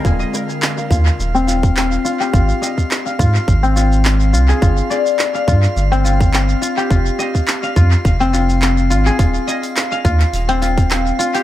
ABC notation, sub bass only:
X:1
M:4/4
L:1/8
Q:"Swing 16ths" 1/4=105
K:Fdor
V:1 name="Sub bass" clef=bass
E,,, z2 E,, E,,,3 z | A,,, z2 A,, A,,,3 C,, | G,,, z2 G,, G,,,3 z | F,,, z2 F,, F,,,3 A,,, |
E,,, z2 E,, E,,,3 z |]